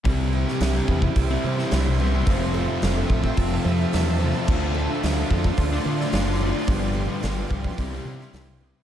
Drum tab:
CC |----------------|----------------|x---------------|----------------|
HH |o---o---o---o---|o---o---o---o---|----o---o---o---|o---o---o---o---|
SD |---oo------oo---|----o-------o---|----o------oo---|----o------oo---|
BD |o-----ooo-------|o-----ooo-------|o-----ooo-------|o-----ooo-------|